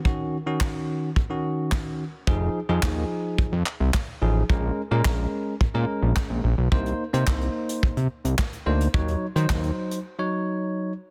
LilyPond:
<<
  \new Staff \with { instrumentName = "Tine electric piano" } { \time 4/4 \key ees \dorian \tempo 4 = 108 <ees des' ges'>8 r16 <ees des' ges'>4~ <ees des' ges'>16 r16 <ees des' ges'>4~ <ees des' ges'>16 r8 | <f ees' aes'>8 r16 <f ees' aes'>4. r4 r16 <f ees' aes'>8 | <aes des' bes'>8 r16 <aes des' bes'>4~ <aes des' bes'>16 r16 <aes des' bes'>4~ <aes des' bes'>16 r8 | <bes ees' c''>8 r16 <bes ees' c''>4. r4 r16 <bes ees' c''>8 |
<ges ees' des''>8 r16 <ges ees' c''>4~ <ges ees' c''>16 r16 <ges ees' des''>4~ <ges ees' des''>16 r8 | }
  \new Staff \with { instrumentName = "Analog synth bass" } { \clef bass \time 4/4 \key ees \dorian r1 | f,,8 r16 f,16 ees,8 r8 f,16 f,16 r16 c,16 r8 a,,8 | bes,,8 r16 bes,16 bes,,8 r8 bes,16 bes,16 r16 bes,,16 r16 bes,,16 bes,,16 ces,16 | c,8 r16 c16 c,8 r8 c16 c16 r16 c,16 r8 d,8 |
ees,8 r16 ees16 ees,8 r2 r8 | }
  \new DrumStaff \with { instrumentName = "Drums" } \drummode { \time 4/4 bd4 <hc bd sn>4 bd4 <hc bd sn>4 | bd4 <hc bd sn>4 bd8 hc8 <hc bd sn>4 | bd4 <hc bd sn>4 bd4 <hc bd sn>4 | bd16 hh8 hh16 <hc bd sn>16 hh8 hh16 bd16 hh8 hh16 <hc bd sn>16 hh8 hh16 |
bd16 hh8 hh16 <hc bd sn>16 hh8 hh16 r4 r4 | }
>>